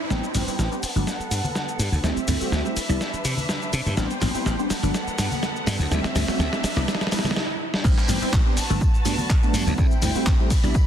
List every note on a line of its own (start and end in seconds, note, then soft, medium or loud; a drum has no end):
0.00 riser medium
0.10 0.19 A1 medium
0.10 0.24 G3 medium
0.10 0.24 B3 medium
0.10 0.25 C4 medium
0.10 0.82 D4 medium
0.10 0.25 D4 medium
0.10 0.82 B4 medium
0.10 0.82 C5 medium
0.10 0.82 G5 medium
0.10 snare soft
0.10 riser medium
0.10 shaker soft
0.24 shaker soft
0.34 0.46 A1 medium
0.34 0.44 G3 medium
0.34 0.44 B3 medium
0.34 0.44 C4 medium
0.34 0.45 D4 medium
0.34 open hi-hat loud
0.34 tambourine medium
0.34 low conga medium
0.34 shaker medium
0.47 0.68 G3 medium
0.47 0.68 B3 medium
0.47 0.68 C4 medium
0.47 0.68 E4 medium
0.47 muted slap bass stroke soft
0.47 shaker soft
0.58 0.67 A1 medium
0.58 snare soft
0.58 shaker soft
0.71 0.81 G3 medium
0.71 0.82 B3 medium
0.71 0.82 C4 medium
0.71 0.82 D4 medium
0.71 shaker soft
0.83 2.03 B3 medium
0.83 2.03 A4 medium
0.83 2.03 F#5 medium
0.83 muted slap bass stroke soft
0.83 open hi-hat medium
0.83 shaker medium
0.95 1.03 G1 medium
0.95 1.08 F#3 medium
0.95 1.08 A3 medium
0.95 1.09 B3 medium
0.95 1.09 D4 loud
0.95 shaker soft
1.07 snare medium
1.07 shaker soft
1.19 muted slap bass stroke soft
1.19 shaker soft
1.31 1.40 G2 medium
1.31 open hi-hat loud
1.31 shaker medium
1.43 tambourine medium
1.43 high conga medium
1.43 shaker soft
1.55 snare medium
1.55 tambourine soft
1.55 shaker soft
1.69 shaker soft
1.79 1.88 G2 medium
1.79 open hi-hat medium
1.79 shaker medium
1.92 2.00 D2 medium
1.92 tambourine medium
1.92 high conga medium
1.92 shaker soft
2.03 2.12 D2 medium
2.03 2.18 G3 medium
2.03 2.18 A3 medium
2.03 2.18 C4 medium
2.03 2.76 C4 medium
2.03 2.18 E4 medium
2.03 2.76 G4 medium
2.03 3.96 E5 medium
2.03 snare medium
2.03 shaker soft
2.16 muted slap bass stroke soft
2.16 shaker soft
2.28 2.40 D2 medium
2.28 2.38 G3 medium
2.28 2.38 A3 medium
2.28 2.38 C4 medium
2.28 2.38 E4 medium
2.28 open hi-hat loud
2.28 tambourine medium
2.28 low conga medium
2.28 shaker medium
2.40 2.61 G3 medium
2.40 2.61 A3 medium
2.40 2.61 C4 medium
2.40 2.61 F#4 medium
2.40 muted slap bass stroke soft
2.40 tambourine soft
2.40 shaker soft
2.52 2.61 D2 medium
2.52 snare medium
2.52 shaker soft
2.65 2.75 G3 medium
2.65 2.75 A3 medium
2.65 2.75 C4 medium
2.65 2.75 E4 medium
2.65 shaker soft
2.76 4.68 D4 medium
2.76 3.96 B4 medium
2.76 muted slap bass stroke soft
2.76 open hi-hat medium
2.76 tambourine medium
2.76 shaker medium
2.89 2.97 C2 medium
2.89 3.02 G3 medium
2.89 3.02 B3 medium
2.89 3.02 D4 medium
2.89 3.02 E4 loud
2.89 tambourine soft
2.89 shaker soft
3.01 snare medium
3.01 shaker soft
3.13 muted slap bass stroke soft
3.13 shaker soft
3.23 3.33 C3 medium
3.23 open hi-hat loud
3.23 tambourine medium
3.23 shaker medium
3.37 tambourine soft
3.37 high conga medium
3.37 shaker soft
3.49 snare medium
3.49 tambourine soft
3.49 shaker soft
3.62 shaker soft
3.73 3.82 C3 loud
3.73 open hi-hat medium
3.73 tambourine medium
3.73 shaker medium
3.86 3.94 G2 medium
3.86 tambourine medium
3.86 high conga medium
3.86 shaker soft
3.97 4.06 A1 loud
3.97 4.11 G3 medium
3.97 4.11 B3 medium
3.97 4.11 C4 medium
3.97 4.12 D4 loud
3.97 4.70 B4 medium
3.97 4.69 C5 medium
3.97 4.70 G5 medium
3.97 snare medium
3.97 tambourine soft
3.97 shaker soft
4.10 shaker soft
4.20 4.34 A1 medium
4.20 4.31 G3 medium
4.20 4.31 B3 medium
4.20 4.32 C4 medium
4.20 4.32 D4 medium
4.20 snare medium
4.20 open hi-hat loud
4.20 tambourine medium
4.20 low conga medium
4.20 shaker medium
4.33 4.55 G3 medium
4.33 4.55 B3 medium
4.33 4.55 C4 medium
4.33 4.55 E4 medium
4.33 muted slap bass stroke soft
4.33 tambourine medium
4.33 shaker soft
4.45 4.54 A1 medium
4.45 snare medium
4.45 tambourine soft
4.45 shaker soft
4.59 4.69 G3 medium
4.59 4.69 B3 medium
4.59 4.69 C4 medium
4.59 4.69 D4 medium
4.59 shaker soft
4.70 5.90 B3 medium
4.70 5.90 A4 medium
4.70 5.90 F#5 medium
4.70 muted slap bass stroke soft
4.70 snare medium
4.70 open hi-hat medium
4.70 tambourine medium
4.70 shaker medium
4.82 4.90 G1 medium
4.82 4.95 F#3 loud
4.82 4.95 A3 medium
4.82 4.96 B3 medium
4.82 4.96 D4 loud
4.82 tambourine soft
4.82 shaker soft
4.94 snare medium
4.94 tambourine soft
4.94 shaker soft
5.07 muted slap bass stroke soft
5.07 shaker soft
5.18 5.27 G2 medium
5.18 snare medium
5.18 open hi-hat loud
5.18 tambourine medium
5.18 shaker medium
5.31 tambourine soft
5.31 high conga medium
5.31 shaker soft
5.42 snare medium
5.42 tambourine soft
5.42 shaker soft
5.56 shaker soft
5.66 5.75 G2 loud
5.66 snare medium
5.66 open hi-hat loud
5.66 tambourine medium
5.66 shaker medium
5.79 5.87 D2 loud
5.79 tambourine medium
5.79 high conga loud
5.79 shaker soft
5.91 6.00 D2 loud
5.91 6.05 G3 medium
5.91 6.05 A3 medium
5.91 6.63 C4 medium
5.91 6.05 C4 medium
5.91 6.06 E4 loud
5.91 6.63 G4 medium
5.91 7.35 E5 medium
5.91 snare medium
5.91 tambourine soft
5.91 shaker soft
6.04 muted slap bass stroke soft
6.04 snare medium
6.04 shaker soft
6.15 6.27 D2 medium
6.15 6.25 G3 medium
6.15 6.25 A3 medium
6.15 6.25 C4 medium
6.15 6.25 E4 medium
6.15 snare medium
6.15 open hi-hat loud
6.15 tambourine medium
6.15 low conga medium
6.15 shaker medium
6.27 6.48 G3 medium
6.27 6.48 A3 medium
6.27 6.48 C4 medium
6.27 6.49 F#4 loud
6.27 muted slap bass stroke soft
6.27 snare medium
6.27 tambourine medium
6.27 shaker soft
6.38 6.48 D2 medium
6.38 snare medium
6.38 tambourine soft
6.38 shaker soft
6.52 6.62 G3 medium
6.52 6.62 A3 medium
6.52 6.62 C4 medium
6.52 6.63 E4 medium
6.52 snare medium
6.52 shaker soft
6.63 7.36 D4 medium
6.63 7.36 B4 medium
6.63 muted slap bass stroke soft
6.63 snare loud
6.63 open hi-hat medium
6.63 tambourine medium
6.63 shaker medium
6.76 6.84 C2 medium
6.76 6.89 G3 loud
6.76 6.89 B3 medium
6.76 6.90 D4 medium
6.76 6.90 E4 loud
6.76 snare medium
6.76 tambourine soft
6.76 shaker soft
6.88 snare loud
6.88 tambourine soft
6.88 shaker soft
6.95 snare medium
7.01 snare medium
7.01 shaker soft
7.07 snare medium
7.11 7.34 G3 medium
7.11 7.34 B3 medium
7.11 7.34 D4 medium
7.11 7.34 E4 medium
7.11 snare loud
7.11 open hi-hat loud
7.11 tambourine medium
7.11 shaker medium
7.19 snare medium
7.24 snare medium
7.24 tambourine medium
7.24 high conga medium
7.24 shaker soft
7.31 snare medium
7.36 snare loud
7.74 snare medium
7.84 7.93 A1 loud
7.84 7.99 G3 medium
7.84 7.99 B3 medium
7.84 7.99 C4 medium
7.84 8.56 D4 medium
7.84 7.99 D4 loud
7.84 8.56 B4 medium
7.84 8.56 C5 medium
7.84 8.56 G5 medium
7.84 kick loud
7.84 tambourine medium
7.84 crash loud
7.84 shaker soft
7.97 clap soft
7.97 tambourine soft
7.97 shaker soft
8.08 8.21 A1 medium
8.08 8.18 G3 medium
8.08 8.19 B3 medium
8.08 8.19 C4 medium
8.08 8.19 D4 medium
8.08 open hi-hat loud
8.08 tambourine medium
8.08 low conga medium
8.08 shaker medium
8.21 8.42 G3 medium
8.21 8.42 B3 medium
8.21 8.42 C4 medium
8.21 8.42 E4 medium
8.21 muted slap bass stroke soft
8.21 tambourine soft
8.21 shaker soft
8.32 8.42 A1 medium
8.32 kick loud
8.32 clap loud
8.32 tambourine medium
8.32 shaker soft
8.45 8.56 G3 medium
8.45 8.56 B3 medium
8.45 8.56 C4 medium
8.45 8.56 D4 medium
8.45 tambourine soft
8.57 9.77 F#4 medium
8.57 9.77 B4 medium
8.57 9.77 A5 medium
8.57 muted slap bass stroke soft
8.57 open hi-hat medium
8.57 tambourine medium
8.57 shaker medium
8.69 8.78 G1 medium
8.69 8.83 F#3 loud
8.69 8.83 A3 medium
8.69 8.83 B3 medium
8.69 8.83 D4 loud
8.69 tambourine soft
8.69 shaker soft
8.81 kick loud
8.81 tambourine medium
8.81 shaker soft
8.94 muted slap bass stroke soft
8.94 tambourine soft
8.94 shaker soft
9.05 9.14 G2 medium
9.05 9.27 F#3 medium
9.05 9.27 A3 medium
9.05 9.27 B3 medium
9.05 9.27 D4 medium
9.05 open hi-hat loud
9.05 tambourine medium
9.05 shaker medium
9.18 tambourine soft
9.18 high conga medium
9.18 shaker soft
9.30 kick loud
9.30 clap loud
9.30 tambourine medium
9.30 shaker soft
9.42 9.64 F#3 medium
9.42 9.64 A3 medium
9.42 9.64 B3 medium
9.42 9.64 D4 loud
9.42 tambourine soft
9.42 shaker soft
9.54 9.62 G2 loud
9.54 open hi-hat medium
9.54 tambourine loud
9.54 shaker medium
9.66 9.74 D2 loud
9.66 9.76 F#3 medium
9.66 9.77 A3 medium
9.66 9.77 B3 medium
9.66 9.77 D4 medium
9.66 tambourine soft
9.66 high conga loud
9.66 shaker soft
9.78 9.87 D2 loud
9.78 9.92 G3 medium
9.78 9.92 A3 medium
9.78 9.92 C4 medium
9.78 10.50 E4 medium
9.78 9.92 E4 loud
9.78 10.50 C5 medium
9.78 10.50 G5 medium
9.78 kick loud
9.78 tambourine medium
9.78 shaker soft
9.91 muted slap bass stroke soft
9.91 tambourine soft
9.91 shaker soft
10.02 10.14 D2 medium
10.02 10.12 G3 medium
10.02 10.12 A3 medium
10.02 10.12 C4 medium
10.02 10.12 E4 medium
10.02 open hi-hat loud
10.02 tambourine medium
10.02 low conga medium
10.02 shaker medium
10.15 10.35 G3 medium
10.15 10.36 A3 medium
10.15 10.36 C4 medium
10.15 10.36 F#4 medium
10.15 muted slap bass stroke soft
10.15 tambourine soft
10.15 shaker soft
10.26 10.35 D2 medium
10.26 kick loud
10.26 clap loud
10.26 tambourine soft
10.26 shaker soft
10.40 10.50 G3 medium
10.40 10.50 A3 medium
10.40 10.50 C4 medium
10.40 10.50 E4 medium
10.40 tambourine soft
10.50 10.87 E4 medium
10.50 10.87 D5 medium
10.50 10.87 B5 medium
10.50 muted slap bass stroke soft
10.50 kick medium
10.50 open hi-hat medium
10.50 tambourine medium
10.50 shaker medium
10.63 10.71 C2 medium
10.63 10.76 G3 loud
10.63 10.76 B3 medium
10.63 10.76 D4 medium
10.63 10.77 E4 loud
10.63 tambourine soft
10.63 shaker soft
10.75 kick loud
10.75 tambourine medium
10.75 shaker soft